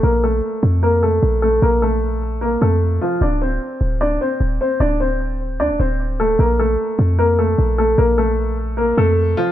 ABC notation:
X:1
M:4/4
L:1/16
Q:1/4=151
K:Bblyd
V:1 name="Grand piano"
[B,B]2 [A,A]6 [B,B]2 [A,A]4 [A,A]2 | [B,B]2 [A,A]6 [B,B]2 [A,A]4 [F,F]2 | [Dd]2 [Cc]6 [Dd]2 [Cc]4 [Cc]2 | [Dd]2 [Cc]6 [Dd]2 [Cc]4 [A,A]2 |
[B,B]2 [A,A]6 [B,B]2 [A,A]4 [A,A]2 | [B,B]2 [A,A]6 [B,B]2 [A,A]4 [F,F]2 |]
V:2 name="808-style bass" clef=bass
B,,,4 z2 F,,6 B,,,4 | B,,,8- B,,,2 F,,4 z2 | D,,,4 z2 D,,,4 z2 D,,,2 z2 | D,,,8 D,, D,,, D,,,6 |
B,,,4 z2 F,,6 B,,,4 | B,,,8- B,,,2 F,,4 z2 |]